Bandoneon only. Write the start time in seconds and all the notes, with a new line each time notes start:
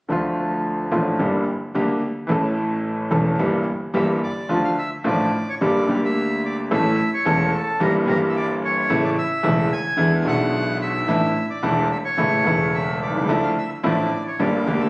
3.96 E5
4.23 D5
4.64 F5
4.78 E5
5.07 D5
5.49 C#5
5.62 D5
6.05 E5
6.45 D5
6.73 E5
7.14 C#5
7.54 A4
7.81 A#4
8.09 A#4
8.29 E5
8.36 D5
8.64 C#5
9.05 D5
9.18 E5
9.72 G#5
10.21 G#5
10.28 F#5
10.81 E5
11.50 D5
11.92 E5
12.05 C#5
12.74 E5
13.02 D5
13.43 F5
13.58 E5
13.85 D5
14.27 C#5
14.41 D5
14.80 E5